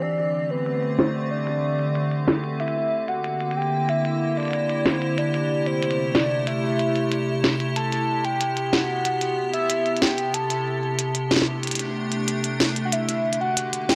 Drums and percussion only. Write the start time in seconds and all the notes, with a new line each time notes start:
0.02 closed hi-hat
0.18 closed hi-hat
0.50 closed hi-hat
0.66 closed hi-hat
0.83 closed hi-hat
0.99 snare
1.47 closed hi-hat
1.79 closed hi-hat
1.95 closed hi-hat
2.11 closed hi-hat
2.28 snare
2.44 closed hi-hat
2.60 closed hi-hat
2.68 closed hi-hat
3.08 closed hi-hat
3.24 closed hi-hat
3.40 closed hi-hat
3.51 closed hi-hat
3.62 closed hi-hat
3.89 closed hi-hat
4.05 closed hi-hat
4.37 closed hi-hat
4.40 closed hi-hat
4.43 closed hi-hat
4.45 closed hi-hat
4.48 closed hi-hat
4.51 closed hi-hat
4.53 closed hi-hat
4.70 closed hi-hat
4.86 snare
5.02 closed hi-hat
5.18 closed hi-hat
5.34 closed hi-hat
5.66 closed hi-hat
5.83 closed hi-hat
5.91 closed hi-hat
6.15 snare
6.47 closed hi-hat
6.79 closed hi-hat
6.96 closed hi-hat
7.12 closed hi-hat
7.44 snare
7.60 closed hi-hat
7.76 closed hi-hat
7.92 closed hi-hat
8.25 closed hi-hat
8.41 closed hi-hat
8.57 closed hi-hat
8.73 snare
9.05 closed hi-hat
9.21 closed hi-hat
9.54 closed hi-hat
9.70 closed hi-hat
9.86 closed hi-hat
9.97 closed hi-hat
10.02 snare
10.07 closed hi-hat
10.18 closed hi-hat
10.34 closed hi-hat
10.50 closed hi-hat
10.99 closed hi-hat
11.15 closed hi-hat
11.31 snare
11.36 snare
11.42 snare
11.63 closed hi-hat
11.67 closed hi-hat
11.71 closed hi-hat
11.75 closed hi-hat
11.79 closed hi-hat
12.12 closed hi-hat
12.28 closed hi-hat
12.44 closed hi-hat
12.60 snare
12.76 closed hi-hat
12.92 closed hi-hat
13.09 closed hi-hat
13.33 closed hi-hat
13.57 closed hi-hat
13.73 closed hi-hat
13.89 snare